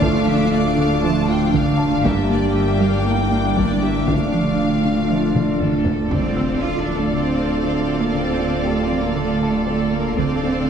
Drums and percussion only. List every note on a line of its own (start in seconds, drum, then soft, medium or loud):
0.02 taiko medium
1.54 taiko medium
2.05 taiko medium
3.57 taiko medium
4.08 taiko medium
5.35 taiko mid medium
5.60 taiko low-mid medium
5.85 taiko low medium
6.11 taiko soft
10.18 taiko medium